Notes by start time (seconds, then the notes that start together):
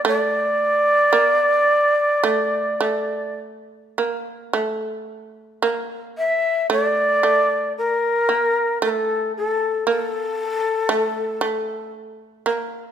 0.05 A3 D5
1.13 A#3
2.24 A3
2.81 A3
3.98 A#3
4.53 A3
5.62 A#3
6.18 E5
6.70 A3 D5
7.23 A3
7.78 A#4
8.29 A#3
8.82 A3 A#4
8.89 A4
9.37 A4
9.87 A#3 A4
10.89 A3
11.41 A3
12.46 A#3